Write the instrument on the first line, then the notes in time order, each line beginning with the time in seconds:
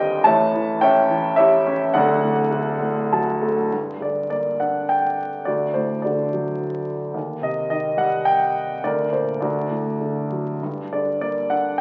grand piano
Already playing: G1 G2 D3 D#3 G3 D#4 G4 C5 D#5 G5 C6
0.24 A1 A2 C#5 E5 A5
0.55 E3
0.81 C#4 C#5 E5 G5
1.09 E3
1.36 E4 G4 C#5 E5
1.67 C#4
1.94 D1 D2 A4 D5 F#5
2.23 A2
2.51 D3
2.81 A2
3.12 F#3 A5
3.42 A3
3.73 G2
4.00 D3 D5
4.30 A#3 D5
4.60 D4 F#5
4.89 G5
5.45 D2 F#4 D5
5.74 A2 C5
6.02 D3 F#4 D5
6.33 F#3
7.14 D#2
7.41 C3 D#5
7.70 D#3 D#5
7.97 G3 F#5
8.25 G5
8.84 D2 A#4 D5
9.13 A#2 C5
9.40 D2 F#4 D5
9.70 A2
10.01 D3
10.32 F#3
10.63 G2
10.93 D3 D5
11.21 A#3 D5
11.50 D4 F#5